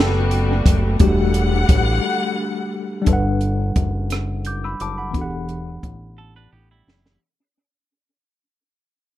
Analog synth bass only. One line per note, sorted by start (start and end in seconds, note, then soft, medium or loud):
0.00 0.62 F#1 medium
0.66 0.97 F#1 medium
1.01 1.65 E1 loud
1.70 2.00 A1 medium
3.08 3.72 G1 loud
3.77 4.76 F#1 medium
4.81 5.16 F#1 medium
5.15 5.79 E1 loud
5.84 6.48 A1 medium
6.53 6.83 A1 medium
6.88 7.18 F#1 medium